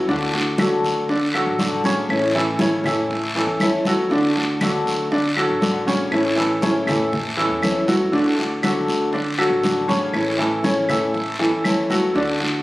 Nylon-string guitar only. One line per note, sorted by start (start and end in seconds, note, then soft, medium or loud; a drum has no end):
0.09 0.33 D3 medium
0.09 0.33 A3 medium
0.09 0.33 D4 medium
0.09 0.32 F#4 medium
0.33 0.59 A3 soft
0.33 0.59 D4 soft
0.33 0.58 F#4 soft
0.59 1.09 D3 medium
0.59 1.09 A3 medium
0.59 1.09 D4 medium
0.59 1.10 F#4 medium
1.10 muted nylon-string guitar stroke medium
1.34 1.58 A3 soft
1.34 1.59 D4 soft
1.34 1.58 F#4 medium
1.59 1.83 D3 medium
1.59 1.84 A3 medium
1.59 1.84 D4 medium
1.59 1.83 F#4 medium
1.84 2.09 A3 soft
1.84 2.09 D4 soft
1.84 2.09 F#4 medium
2.09 2.34 E3 medium
2.09 2.34 A3 medium
2.09 2.35 C#4 medium
2.09 2.33 E4 medium
2.35 2.60 A3 soft
2.35 2.60 C#4 soft
2.35 2.59 E4 soft
2.60 3.09 E3 medium
2.60 3.10 A3 medium
2.60 3.10 C#4 medium
2.60 3.10 E4 medium
3.10 muted nylon-string guitar stroke medium
3.35 3.60 A3 soft
3.35 3.60 C#4 medium
3.35 3.59 E4 medium
3.60 3.85 E3 medium
3.60 3.85 A3 medium
3.60 3.85 C#4 medium
3.60 3.84 E4 medium
3.85 4.10 A3 soft
3.85 4.10 C#4 soft
3.85 4.09 E4 soft
4.10 4.35 D3 medium
4.10 4.35 A3 medium
4.10 4.36 D4 medium
4.10 4.34 F#4 medium
4.35 4.60 A3 soft
4.35 4.61 D4 soft
4.35 4.60 F#4 medium
4.61 5.10 D3 medium
4.61 5.10 A3 medium
4.61 5.10 D4 medium
4.61 5.11 F#4 medium
5.11 muted nylon-string guitar stroke medium
5.36 5.60 A3 soft
5.36 5.61 D4 medium
5.36 5.61 F#4 soft
5.61 5.85 D3 medium
5.61 5.86 A3 medium
5.61 5.86 D4 medium
5.61 5.85 F#4 medium
5.86 6.11 A3 soft
5.86 6.11 D4 soft
5.86 6.11 F#4 medium
6.11 6.36 E3 medium
6.11 6.36 A3 medium
6.11 6.37 C#4 medium
6.11 6.35 E4 medium
6.36 6.61 A3 soft
6.36 6.62 C#4 soft
6.36 6.61 E4 soft
6.61 7.11 E3 medium
6.61 7.12 A3 medium
6.61 7.12 C#4 medium
6.61 7.12 E4 medium
7.12 muted nylon-string guitar stroke medium
7.37 7.62 A3 soft
7.37 7.62 C#4 soft
7.37 7.62 E4 medium
7.62 7.87 E3 medium
7.62 7.87 A3 medium
7.62 7.88 C#4 medium
7.62 7.87 E4 medium
7.88 8.13 A3 soft
7.88 8.13 C#4 soft
7.88 8.12 E4 soft
8.13 8.37 D3 medium
8.13 8.38 A3 medium
8.13 8.38 D4 medium
8.13 8.37 F#4 medium
8.38 8.63 A3 soft
8.38 8.63 D4 soft
8.38 8.63 F#4 soft
8.63 9.12 D3 medium
8.63 9.13 A3 medium
8.63 9.14 D4 medium
8.63 9.13 F#4 medium
9.14 muted nylon-string guitar stroke medium
9.38 9.63 A3 soft
9.38 9.63 D4 soft
9.38 9.63 F#4 soft
9.63 9.88 D3 medium
9.63 9.88 A3 medium
9.63 9.88 D4 medium
9.63 9.86 F#4 medium
9.88 10.13 A3 soft
9.88 10.13 D4 soft
9.88 10.13 F#4 soft
10.13 10.38 E3 medium
10.13 10.38 A3 medium
10.13 10.38 C#4 medium
10.13 10.37 E4 medium
10.38 10.63 A3 soft
10.38 10.63 C#4 soft
10.38 10.63 E4 soft
10.63 11.13 E3 medium
10.63 11.14 A3 medium
10.63 11.14 C#4 medium
10.63 11.14 E4 medium
11.14 muted nylon-string guitar stroke medium
11.39 11.64 A3 soft
11.39 11.64 C#4 soft
11.39 11.64 E4 soft
11.65 11.89 E3 medium
11.65 11.89 A3 medium
11.65 11.89 C#4 medium
11.65 11.88 E4 medium
11.89 12.14 A3 soft
11.89 12.15 C#4 soft
11.89 12.14 E4 medium
12.14 12.39 D3 medium
12.14 12.39 A3 medium
12.14 12.40 D4 medium
12.14 12.39 F#4 medium
12.40 12.63 A3 soft
12.40 12.63 D4 soft
12.40 12.63 F#4 soft